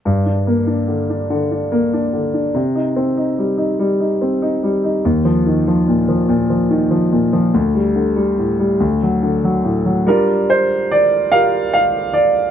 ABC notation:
X:1
M:6/8
L:1/16
Q:3/8=48
K:Gm
V:1 name="Grand piano"
z12 | z12 | z12 | z12 |
B2 c2 d2 f2 f2 d2 |]
V:2 name="Grand piano" clef=bass
G,, D B, D D, D D, D B, D D, D | C, E C E G, E G, E C E G, E | E,, F, E, F, B,, F, B,, F, E, F, B,, F, | D,, G, D, G, A,, G, D,, ^F, D, F, A,, F, |
[G,DF]6 [FGB]6 |]